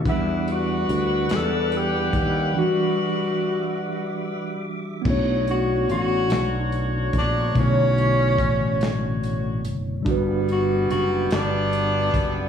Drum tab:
CC |------|------|x-----|------|
HH |xxxxxx|------|-xxxxx|xxxxxx|
SD |---o--|------|---o--|---o--|
BD |o----o|------|o----o|o-o---|

CC |------|
HH |xxxxxx|
SD |---o--|
BD |o----o|